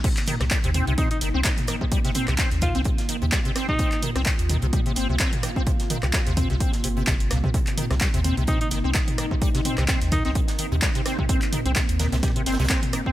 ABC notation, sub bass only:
X:1
M:4/4
L:1/16
Q:"Swing 16ths" 1/4=128
K:Cm
V:1 name="Sub bass" clef=bass
z3 C,, z E,,2 C,, z2 G,,, C,, z4 | z3 C,, z E,,2 C,, z3 E,, z4 | z3 C,, z E,,2 C,, z2 G,,, C,, z4 | z3 C,, z E,,2 C,, z2 G,,,2 G,,,2 C,, z |
z3 C,, z E,,2 C,, z2 G,,, C,, z4 | z3 C,, z E,,2 C,, z3 E,, z4 | z3 C,, z E,,2 C,, z2 G,,, C,, z4 |]